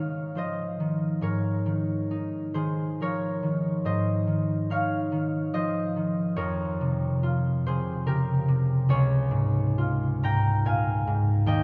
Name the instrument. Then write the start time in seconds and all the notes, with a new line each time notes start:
harp
Already playing: G#2 D#3 D#4 C5 C#5 D#5 F5
0.35 F3 C5 D#5
0.80 D#3
1.21 G#2 A#4 C#5
1.66 D#3
2.11 D#4
2.54 D#3 G#4 C5
3.01 F3 A#4 C#5
3.43 D#3
3.85 G#2 C5 D#5
4.27 D#3
4.70 D#4 C#5 F5
5.12 D#3
5.53 F3 C5 D#5
5.96 D#3
6.36 F2 A#4 C#5
6.81 C3
7.23 F4
7.66 C3 G#4 C5
8.06 C#3 G4 A#4
8.48 C3
8.89 C#2 G#4 C#5
9.31 G#2
9.78 F4
10.23 G#2 G5 A#5
10.65 A#2 F5 G#5
11.07 G#2
11.46 D#2 D#5 G5